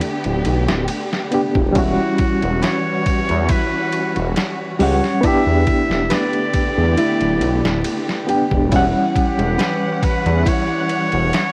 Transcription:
Already playing: string section D3 A3 B3 G4, reed electric piano B3 D4 G4
0.01 ride
0.24 detuned saw bass D1, ride
0.45 detuned saw bass B1, ride
0.68 detuned saw bass D1, snare
0.88 ride
1.13 snare
1.31 reed electric piano B3 D4 G4, ride
1.55 detuned saw bass E1, kick
1.72 detuned saw bass E1, string section E3 G3 C#4 F#4, reed electric piano G3 C#4, nylon-string guitar E4, kick, ride
1.78 reed electric piano F#4, muted trumpet F#4
2.18 kick, ride
2.42 detuned saw bass E1, ride
2.61 nylon-string guitar B4, muted trumpet C#5, snare, ride
3.06 kick, ride
3.29 detuned saw bass E2, ride
3.49 nylon-string guitar E4, muted trumpet B4, kick, ride
3.92 ride
4.16 detuned saw bass E1, ride
4.36 snare, ride
4.79 detuned saw bass C#2, reed electric piano G3 C#4 F#5, nylon-string guitar G4, muted trumpet C#5, open hi-hat
5.04 snare
5.21 string section D3 A3 B3 G4, reed electric piano B3 D4, nylon-string guitar E4, kick, ride
5.25 reed electric piano G4, muted trumpet E5
5.47 detuned saw bass E2
5.67 kick, ride
5.90 detuned saw bass E1, snare
6.10 nylon-string guitar B4, muted trumpet D5, snare, ride
6.33 ride
6.54 kick, ride
6.77 detuned saw bass E2
6.98 nylon-string guitar E4, ride
7.21 detuned saw bass D1, ride
7.41 detuned saw bass B1, ride
7.64 detuned saw bass D1, snare
7.84 ride
8.09 snare
8.27 reed electric piano B3 D4 G4, nylon-string guitar G4, ride
8.51 detuned saw bass E1, kick
8.69 detuned saw bass E1, string section E3 G3 C#4 F#5, reed electric piano G3 C#4, nylon-string guitar E4, kick, ride
8.76 reed electric piano F#5
9.16 muted trumpet G4, kick, ride
9.38 detuned saw bass E1, ride
9.58 nylon-string guitar B4, snare, ride
10.03 muted trumpet B4, kick, ride
10.26 detuned saw bass E2, ride
10.45 nylon-string guitar E4, muted trumpet C#5, kick, ride
10.89 ride
11.12 detuned saw bass E1, ride
11.33 snare, ride

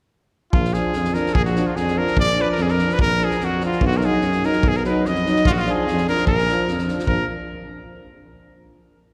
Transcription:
0.52 tuba A#1, trumpet F4, kick
0.65 snare
0.72 trombone F3, euphonium D4, trumpet G#4, snare
0.93 tuba F2, snare
1.04 snare
1.12 trombone F3, euphonium D4, trumpet A#4, snare
1.26 snare
1.34 tuba A#1, trumpet G#4, kick
1.45 trumpet F#4, snare
1.53 trombone F3, euphonium D4, snare
1.66 trumpet F4
1.76 tuba F2, trumpet G#4, snare
1.87 snare
1.95 trombone F3, euphonium D4, trumpet A#4
2.07 snare
2.16 tuba A#1, trumpet D5, kick
2.26 snare
2.36 trombone F3, euphonium D4, snare
2.41 trumpet B4
2.52 trumpet A#4
2.56 tuba F2, snare
2.62 trumpet G#4
2.68 trumpet A#4, snare
2.78 trombone F3, euphonium D4, snare
2.89 trumpet B4, snare
2.99 tuba A#1, trumpet A#4, kick
3.09 snare
3.18 trombone F3, euphonium D4, snare
3.24 trumpet G#4
3.30 snare
3.40 tuba F2, snare
3.44 trumpet F#4
3.59 trombone F3, euphonium D4, snare
3.66 trumpet F4
3.72 snare
3.80 tuba B1, kick
3.87 trumpet F#4
3.92 snare
3.97 trombone F#3, trumpet A#4, snare
4.01 euphonium D#4, trumpet G#4
4.21 tuba F#2, snare
4.32 snare
4.42 trombone F#3, euphonium D#4, snare
4.46 trumpet A#4
4.52 snare
4.63 tuba B1, kick
4.68 trumpet G#4
4.74 trumpet A#4, snare
4.83 trombone F#3, euphonium D#4, trumpet B4, snare
5.05 tuba F2, trumpet D#5, snare
5.15 snare
5.26 trombone F#3, euphonium D#4, snare
5.36 snare
5.45 tuba A#1, trumpet F4, kick
5.50 trumpet F#4
5.56 trumpet F4, snare
5.66 trombone F3, euphonium D4, snare
5.71 trumpet G#4
5.86 tuba F2, snare
5.97 snare
6.07 trombone F3, euphonium D4, trumpet A#4, snare
6.17 snare
6.26 tuba A#1, trumpet A#4, kick
6.38 snare
6.47 trombone F3, euphonium D4, snare
6.68 tuba F2, snare
6.78 snare
6.88 trombone F3, euphonium D4, snare
6.99 snare
7.06 tuba A#1, trombone F3, euphonium D4, trumpet A#4, kick

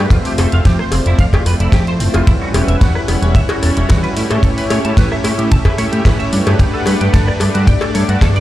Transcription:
0.10 analog synth bass F2, analog synth pad A3 C4 F4 C5 E5, clean electric guitar F4, kick, closed hi-hat, ride
0.25 clean electric guitar G4, open hi-hat
0.38 analog synth bass F1, clean electric guitar A4, open hi-hat, cowbell
0.52 analog synth bass F1, analog synth pad A3 C4 F4 C5, clean electric guitar F5, closed hi-hat
0.65 analog synth bass F2, clean electric guitar G4, kick, snare, closed hi-hat, ride
0.79 clean electric guitar C5, cross-stick
0.92 analog synth bass F1, analog synth pad A3 C4 F4 D5, clean electric guitar C4, open hi-hat, cowbell
1.06 analog synth bass F1, clean electric guitar E4, closed hi-hat
1.19 analog synth bass F2, clean electric guitar F5, kick, closed hi-hat, ride
1.33 analog synth pad A3 C4 E4 F4 D5, clean electric guitar G4, kick, closed hi-hat, cowbell
1.45 analog synth bass F1, analog synth pad F3 A3 C4, clean electric guitar B4, cross-stick, open hi-hat
1.60 analog synth bass F1, clean electric guitar E4, closed hi-hat
1.72 analog synth bass F2, clean electric guitar G4, kick, snare, closed hi-hat, ride, cowbell
1.87 analog synth pad A3 C4 E4 F4 C5, clean electric guitar C5, closed hi-hat
2.00 analog synth bass F1, analog synth pad A3 C4 E4 F4 C5, clean electric guitar C4, open hi-hat
2.14 analog synth bass F1, clean electric guitar F4, closed hi-hat, cowbell
2.27 analog synth bass E2, analog synth pad G3 C#4 E4 F#4 B4, clean electric guitar E4, kick, closed hi-hat, ride
2.42 clean electric guitar F#4
2.54 analog synth bass E1, clean electric guitar G4, open hi-hat, cowbell
2.68 analog synth bass E1, analog synth pad G3 C#4 E4 B4 F#5, clean electric guitar E5, closed hi-hat
2.81 analog synth bass E2, clean electric guitar F#4, kick, snare, closed hi-hat, ride
2.95 clean electric guitar B4, cross-stick
3.08 analog synth bass E1, analog synth pad G3 C#4 E4 C#5 F#5, clean electric guitar B3, open hi-hat, cowbell
3.22 analog synth bass E1, clean electric guitar C#4, closed hi-hat
3.35 analog synth bass E2, clean electric guitar E5, kick, closed hi-hat, ride
3.49 analog synth pad G3 C#4 E4 F#4 C#5, clean electric guitar F#4, closed hi-hat, cowbell
3.62 analog synth bass E1, clean electric guitar A4, cross-stick, open hi-hat
3.77 analog synth bass E1, clean electric guitar C#4, closed hi-hat
3.89 analog synth bass E2, analog synth pad G3 C#4 E4 F#4 B4, clean electric guitar F#4, kick, snare, closed hi-hat, ride, cowbell
4.03 clean electric guitar B4, closed hi-hat
4.16 analog synth bass A2, analog synth pad A3 C#4 E4 G4 C#5, clean electric guitar E4, open hi-hat
4.30 analog synth bass A2, clean electric guitar A4, closed hi-hat, cowbell
4.43 analog synth bass A1, analog synth pad A3 C#4 E4 G4 C#5, clean electric guitar A4, kick, closed hi-hat, ride
4.58 clean electric guitar B4, open hi-hat
4.70 analog synth bass A2, clean electric guitar C#5, open hi-hat, cowbell
4.84 analog synth bass A2, analog synth pad A3 C#4 E4 G4 C#5, clean electric guitar A5, closed hi-hat
4.97 analog synth bass A1, clean electric guitar B4, kick, snare, closed hi-hat, ride
5.12 clean electric guitar E5, cross-stick
5.24 analog synth bass A2, analog synth pad A3 C#4 E4 G4 E5, clean electric guitar E4, open hi-hat, cowbell
5.38 analog synth bass A2, clean electric guitar G4, closed hi-hat
5.51 analog synth bass A1, clean electric guitar A5, kick, closed hi-hat, ride
5.65 analog synth pad A3 C#4 E4 G4 E5, clean electric guitar B4, kick, closed hi-hat, cowbell
5.78 analog synth bass A2, clean electric guitar C#5, cross-stick, open hi-hat
5.92 analog synth bass A2, clean electric guitar G4, closed hi-hat
6.05 analog synth bass A1, analog synth pad A3 C#4 E4 G4 C#5, clean electric guitar B4, kick, snare, closed hi-hat, ride, cowbell
6.19 clean electric guitar E5, closed hi-hat
6.32 analog synth bass G2, analog synth pad A3 D4 F#4 G4 B4, clean electric guitar D4, open hi-hat
6.47 analog synth bass G2, clean electric guitar G4, closed hi-hat, cowbell
6.59 analog synth bass G1, analog synth pad A3 D4 G4 B4 F#5, clean electric guitar G4, kick, closed hi-hat, ride
6.74 clean electric guitar A4
6.86 analog synth bass G2, clean electric guitar B4, open hi-hat, cowbell
7.00 analog synth bass G2, analog synth pad A3 D4 G4 B4, clean electric guitar G5, closed hi-hat
7.13 analog synth bass G1, clean electric guitar A4, kick, snare, closed hi-hat, ride
7.27 clean electric guitar D5, cross-stick
7.40 analog synth bass G2, analog synth pad A3 D4 G4 D5, clean electric guitar D4, open hi-hat, cowbell
7.54 analog synth bass G2, clean electric guitar F#4, closed hi-hat
7.67 analog synth bass G1, clean electric guitar G5, kick, closed hi-hat, ride
7.81 analog synth pad G3 A3 D4 D5, clean electric guitar A4, closed hi-hat, cowbell
7.94 analog synth bass G2, clean electric guitar C#5, cross-stick, open hi-hat
8.09 analog synth bass G2, clean electric guitar F#4, closed hi-hat
8.21 analog synth bass G1, analog synth pad A3 D4 F#4 G4 B4, clean electric guitar A4, kick, snare, closed hi-hat, ride, cowbell
8.36 clean electric guitar D5, closed hi-hat

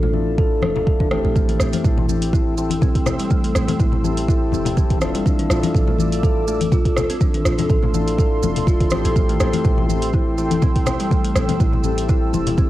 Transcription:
Already playing: 808-style bass A1
0.03 kalimba A3, low conga
0.13 tonewheel organ D4 E4 F4 A4, high conga
0.38 kalimba A4, kick
0.62 808-style bass E1, kalimba A4, cross-stick, high conga
0.76 kalimba A4, low conga
0.87 kalimba A4, kick
1.00 kalimba D4, kick, mid tom
1.11 kalimba A3, tonewheel organ C4 E4 G4 A4, cross-stick, high conga
1.25 808-style bass A1, kalimba A3
1.36 kalimba A3, analog synth pad A4 G5 C6 E6, kick, high conga, maracas
1.49 kalimba A3, closed hi-hat, mid tom
1.60 808-style bass A1, kalimba C4, cross-stick, maracas
1.73 kalimba A3, closed hi-hat, high conga, maracas
1.85 808-style bass A1, kalimba E4, kick, maracas
1.98 kalimba E3, low conga
2.09 tonewheel organ C4 E4 G4 A4, high conga, maracas
2.22 closed hi-hat, maracas
2.33 kalimba E4, kick, maracas
2.58 kalimba E3, tonewheel organ C4 E4 G4 A4, maracas
2.70 closed hi-hat, high conga, maracas
2.82 kalimba C4, kick, low conga, maracas
2.95 kick, closed hi-hat
3.06 cross-stick, low conga, maracas
3.19 kalimba G3, closed hi-hat, maracas
3.31 kalimba A3, kick, high conga, maracas
3.44 kalimba A3, closed hi-hat
3.55 808-style bass A1, kalimba C4, cross-stick, maracas
3.68 kalimba A3, closed hi-hat, high conga, low conga, maracas
3.80 808-style bass A1, kalimba E4, kick, maracas
3.92 kalimba E3, low conga
4.04 tonewheel organ C4 E4 G4 A4, high conga, maracas
4.17 closed hi-hat, maracas
4.28 kalimba E4, kick, maracas
4.52 808-style bass E1, kalimba E3, high conga, maracas
4.65 closed hi-hat, low conga, maracas
4.77 kalimba C4, kick, maracas
4.90 kick, closed hi-hat, mid tom
5.01 tonewheel organ D4 E4 F4 A4, cross-stick, high conga, maracas
5.15 kalimba G3, closed hi-hat, maracas
5.25 kalimba D4, analog synth pad A4 D6 E6, kick, high conga, maracas
5.39 kalimba D4, closed hi-hat, mid tom
5.50 808-style bass A1, kalimba F4, cross-stick, maracas
5.63 kalimba D4, closed hi-hat, high conga, maracas
5.74 808-style bass A1, kalimba A4, kick, maracas
5.87 kalimba A3, low conga
5.99 tonewheel organ D4 E4 F4 A4, high conga, maracas
6.12 closed hi-hat, maracas
6.23 kalimba A4, kick, maracas
6.48 kalimba A3, tonewheel organ D4 E4 F4 A4, maracas
6.61 closed hi-hat, high conga, maracas
6.72 kalimba F4, kick, low conga, maracas
6.85 kick, closed hi-hat
6.97 cross-stick, low conga, maracas
7.10 kalimba C4, closed hi-hat, maracas
7.21 kalimba D4, analog synth pad C6, kick, high conga, maracas
7.34 kalimba D4, closed hi-hat, mid tom
7.45 808-style bass A1, kalimba F4, cross-stick, maracas
7.58 kalimba D4, closed hi-hat, high conga, low conga, maracas
7.70 808-style bass A1, kalimba A4, kick, maracas
7.83 kalimba A3, low conga
7.94 tonewheel organ D4 E4 F4 A4, high conga, maracas
8.07 closed hi-hat, maracas
8.18 kalimba A4, kick, maracas
8.43 808-style bass E1, kalimba A3, high conga, maracas
8.56 closed hi-hat, low conga, maracas
8.67 808-style bass E1, kalimba F4, kick, maracas
8.81 kick, closed hi-hat, mid tom
8.90 808-style bass A1, tonewheel organ C4 E4 G4 A4, cross-stick, high conga, maracas
9.05 808-style bass A1, kalimba C4, closed hi-hat, maracas
9.16 kalimba A3, analog synth pad G5, kick, high conga, maracas
9.29 kalimba A3, closed hi-hat, mid tom
9.40 808-style bass A1, kalimba C4, cross-stick, maracas
9.53 kalimba A3, closed hi-hat, high conga, maracas
9.65 808-style bass A1, kalimba E4, kick, maracas
9.78 kalimba E3, low conga
9.89 tonewheel organ C4 E4 G4 A4, high conga, maracas
10.02 closed hi-hat, maracas
10.13 kalimba E4, kick, maracas
10.38 kalimba E3, tonewheel organ C4 E4 G4 A4, maracas
10.51 closed hi-hat, high conga, maracas
10.62 kalimba C4, kick, low conga, maracas
10.76 kick, closed hi-hat
10.86 cross-stick, low conga, maracas
11.00 kalimba G3, closed hi-hat, maracas
11.10 kalimba A3, kick, high conga, maracas
11.24 kalimba A3, closed hi-hat
11.36 808-style bass A1, kalimba C4, cross-stick, maracas
11.48 kalimba A3, closed hi-hat, high conga, low conga, maracas
11.60 808-style bass A1, kalimba E4, kick, maracas
11.73 kalimba E3, low conga
11.83 tonewheel organ C4 E4 G4 A4, high conga, maracas
11.98 closed hi-hat, maracas
12.09 kalimba E4, kick, maracas
12.33 808-style bass E1, kalimba E3, high conga, maracas
12.46 closed hi-hat, low conga, maracas
12.58 kalimba C4, kick, maracas

